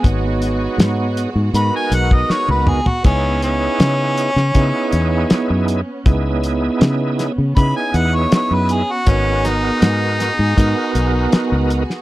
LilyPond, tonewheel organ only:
\new Staff \with { instrumentName = "Tonewheel organ" } { \time 4/4 \key gis \minor \tempo 4 = 80 <b dis' fis' cis''>4. r8 <b dis' fis' ais'>4. r8 | <b dis' e' gis'>4. r8 <b dis' e' gis'>4. r8 | <b dis' e' gis'>4. r8 <b dis' e' gis'>4. r8 | <b dis' fis' ais'>4. r8 <b dis' fis' ais'>4. r8 | }